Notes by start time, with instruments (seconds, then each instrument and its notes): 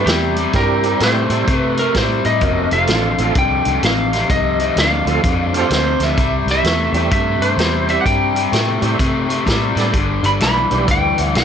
0.06 fingered electric bass E2, overdriven electric guitar C3 G3, lead electric guitar G4, snare, closed hi-hat
0.36 overdriven electric guitar C3 G3, closed hi-hat
0.53 fingered electric bass G2, overdriven electric guitar C3 G3, tonewheel organ G3 C4 E4 G4, lead electric guitar A#4, kick, snare, closed hi-hat
0.83 overdriven electric guitar C3 G3, closed hi-hat
1.00 fingered electric bass A2, overdriven electric guitar C3 A3, lead electric guitar C5, snare, closed hi-hat
1.30 fingered electric bass A2, overdriven electric guitar C3 A3, tonewheel organ G3 C4 E4 A4, closed hi-hat
1.47 fingered electric bass C3, overdriven electric guitar C3 A3, kick, closed hi-hat
1.57 lead electric guitar B4
1.77 overdriven electric guitar C3 A3, lead electric guitar A#4, closed hi-hat
1.94 fingered electric bass A2, overdriven electric guitar C3 G3, lead electric guitar C5, kick, snare, closed hi-hat
2.25 fingered electric bass A2, overdriven electric guitar C3 G3, lead electric guitar D#5, closed hi-hat
2.41 fingered electric bass F1, overdriven electric guitar F2 C3, tonewheel organ A#3 C#4 F#4 A#4, kick, closed hi-hat
2.71 fingered electric bass F1, overdriven electric guitar F2 C3, tonewheel organ A3 C4 F4 A4, lead electric guitar F5, closed hi-hat
2.87 fingered electric bass A1, overdriven electric guitar F2 D3, snare, closed hi-hat
3.18 fingered electric bass A1, overdriven electric guitar F2 D3, tonewheel organ A3 C4 F4 A4, closed hi-hat
3.35 fingered electric bass C2, overdriven electric guitar F2 D3, lead electric guitar G5, kick, closed hi-hat
3.65 fingered electric bass C2, overdriven electric guitar F2 D3, closed hi-hat
3.82 fingered electric bass A1, overdriven electric guitar F2 C3, lead electric guitar F5, snare, closed hi-hat
4.13 overdriven electric guitar F2 C3, snare, closed hi-hat
4.30 fingered electric bass C2, overdriven electric guitar F2 C3, lead electric guitar D#5, kick, closed hi-hat
4.60 overdriven electric guitar F2 C3, closed hi-hat
4.76 fingered electric bass D2, overdriven electric guitar F2 D3, lead electric guitar F5, snare, closed hi-hat
5.06 fingered electric bass D2, overdriven electric guitar F2 D3, tonewheel organ A3 C4 F4 A4, closed hi-hat
5.23 fingered electric bass F2, overdriven electric guitar F2 D3, kick, closed hi-hat
5.53 overdriven electric guitar F2 D3, tonewheel organ A3 C4 F4 G4, closed hi-hat
5.59 harmonica F4 A4 C5
5.70 fingered electric bass D2, overdriven electric guitar F2 C3, snare, closed hi-hat
6.00 fingered electric bass D2, overdriven electric guitar F2 C3, snare, closed hi-hat
6.05 harmonica E5
6.18 fingered electric bass C2, overdriven electric guitar C3 G3, kick, closed hi-hat
6.46 fingered electric bass C2, overdriven electric guitar C3 G3, snare, closed hi-hat
6.51 lead electric guitar E5
6.63 fingered electric bass E2, overdriven electric guitar C3 A3, snare, closed hi-hat
6.93 fingered electric bass E2, overdriven electric guitar C3 A3, tonewheel organ G3 C4 E4 G4, closed hi-hat
7.11 fingered electric bass G2, overdriven electric guitar C3 A3, lead electric guitar E5, kick, closed hi-hat
7.40 fingered electric bass G2, overdriven electric guitar C3 A3, lead electric guitar C5, closed hi-hat
7.57 fingered electric bass E2, overdriven electric guitar C3 G3, snare, closed hi-hat
7.88 overdriven electric guitar C3 G3, tonewheel organ G3 C4 E4 G4, lead electric guitar E5, closed hi-hat
8.01 lead electric guitar F#5
8.06 fingered electric bass G2, overdriven electric guitar C3 G3, lead electric guitar G5, kick, closed hi-hat
8.35 overdriven electric guitar C3 G3, closed hi-hat
8.52 fingered electric bass A2, overdriven electric guitar C3 A3, snare, closed hi-hat
8.82 fingered electric bass A2, overdriven electric guitar C3 A3, tonewheel organ G3 C4 E4 G4, closed hi-hat
8.99 fingered electric bass C3, overdriven electric guitar C3 A3, kick, closed hi-hat
9.28 overdriven electric guitar C3 A3, closed hi-hat
9.45 fingered electric bass A2, overdriven electric guitar C3 G3, kick, snare, closed hi-hat
9.75 fingered electric bass A2, overdriven electric guitar C3 G3, tonewheel organ G3 B3 D4 A4, snare, closed hi-hat
9.93 fingered electric bass G1, overdriven electric guitar G2 D3, kick, closed hi-hat
10.23 fingered electric bass G1, overdriven electric guitar G2 D3, lead electric guitar B5, closed hi-hat
10.40 fingered electric bass B1, overdriven electric guitar G2 E3, lead electric guitar B5, snare, closed hi-hat
10.71 fingered electric bass B1, overdriven electric guitar G2 E3, tonewheel organ G3 B3 D4 G4, closed hi-hat
10.87 fingered electric bass D2, overdriven electric guitar G2 E3, lead electric guitar G5, kick, closed hi-hat
11.18 fingered electric bass D2, overdriven electric guitar G2 E3, closed hi-hat
11.35 fingered electric bass B1, overdriven electric guitar G2 D3, lead electric guitar G5, snare, closed hi-hat